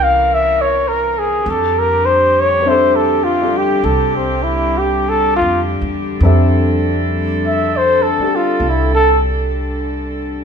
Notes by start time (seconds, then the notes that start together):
Already playing: C2 E3 C4 C#4 A#4
0.03 F5
0.34 E5
0.61 C#5
0.88 A#4
1.19 G#4
1.45 F2 D3 G3 D4 G4
1.50 A4
1.79 A#4
2.05 C5
2.40 C#5
2.60 G3 C4
2.66 D4 C5 E5
2.70 A4
2.96 A4
3.24 F4
3.42 D4 G4 A4
3.57 G4
3.83 C2 A4
4.16 C4
4.43 E4
4.78 G4
5.09 A4
5.36 F4
5.41 F2
5.81 E2
6.18 F2 A4
6.23 G3 C4 D4 A4 E5
7.47 E5
7.77 C5
8.02 A4
8.18 D4, muted upright bass stroke
8.23 G4 A4
8.36 F4
8.60 C2
8.69 E4
8.95 A4